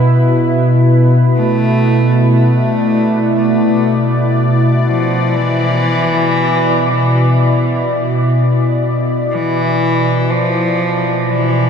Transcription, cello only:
1.36 2.32 A3 loud
2.35 3.31 A3 medium
3.35 4.31 A3 medium
4.87 5.37 F3 medium
5.36 8.31 E3 loud
9.32 10.31 E3 loud
10.30 11.31 F3 loud
11.29 11.70 E3 loud

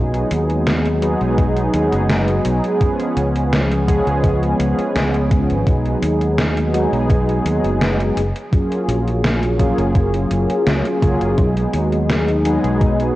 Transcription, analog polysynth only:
0.00 0.98 F#3 medium
0.00 0.98 G#3 medium
0.00 0.98 B3 medium
0.00 0.99 D#4 medium
0.00 0.99 G#4 medium
1.01 1.69 F#3 loud
1.01 1.70 G#3 medium
1.01 1.70 B3 medium
1.01 1.70 D#4 medium
1.01 1.70 G#4 loud
1.72 2.76 F#3 medium
1.72 2.77 G#3 medium
1.72 2.77 B3 medium
1.72 2.77 D#4 medium
1.72 2.78 G#4 medium
2.79 3.83 F3 medium
2.79 3.84 G#3 medium
2.79 3.84 B3 medium
2.79 3.84 C#4 medium
2.79 3.85 G#4 medium
3.87 4.55 F3 medium
3.87 4.55 G#3 medium
3.87 4.55 B3 medium
3.87 4.56 C#4 medium
3.87 4.56 G#4 loud
4.58 5.62 F3 medium
4.58 5.62 G#3 medium
4.58 5.63 B3 medium
4.58 5.63 C#4 medium
4.58 5.63 G#4 loud
5.65 6.69 F#3 medium
5.65 6.69 G#3 medium
5.65 6.70 B3 medium
5.65 6.70 D#4 medium
5.65 6.70 G#4 medium
6.73 7.41 F#3 medium
6.73 7.41 G#3 medium
6.73 7.41 B3 medium
6.73 7.41 D#4 medium
6.73 7.41 G#4 loud
7.44 8.14 F#3 medium
7.44 8.14 G#3 medium
7.44 8.15 B3 medium
7.44 8.15 D#4 medium
7.44 8.15 G#4 loud
8.51 9.55 F#3 medium
8.51 9.55 A#3 medium
8.51 9.55 C#4 medium
8.51 9.56 F4 medium
8.51 9.56 G#4 medium
9.59 10.26 F#3 medium
9.59 10.27 A#3 medium
9.59 10.27 C#4 medium
9.59 10.27 F4 medium
9.59 10.27 G#4 loud
11.02 11.34 F#3 loud
11.02 11.34 A#3 medium
11.02 11.34 C#4 medium
11.02 11.34 F4 medium
11.02 11.34 G#4 loud
11.37 12.40 F#3 medium
11.37 12.41 G#3 medium
11.37 12.41 B3 medium
11.37 12.42 D#4 medium
12.45 13.12 F#3 medium
12.45 13.12 G#3 medium
12.45 13.13 B3 medium
12.45 13.13 D#4 medium
12.45 13.13 G#4 loud

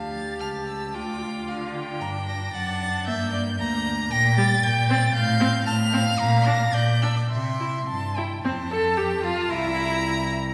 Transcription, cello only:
0.00 0.36 D2 medium
0.40 0.95 C#2 medium
0.94 1.47 D2 medium
1.48 2.02 D3 medium
2.01 2.53 G2 medium
2.54 3.09 F#2 medium
3.07 3.61 G2 medium
3.60 4.11 D2 medium
4.11 4.55 A#2 medium
4.63 5.06 A#2 medium
5.15 5.58 A2 medium
5.67 6.11 A2 loud
6.20 6.65 A#2 medium
6.75 7.22 A#2 medium
7.32 7.79 C3 medium
7.88 8.35 G2 medium
8.44 9.46 F2 medium
9.50 10.54 C2 medium

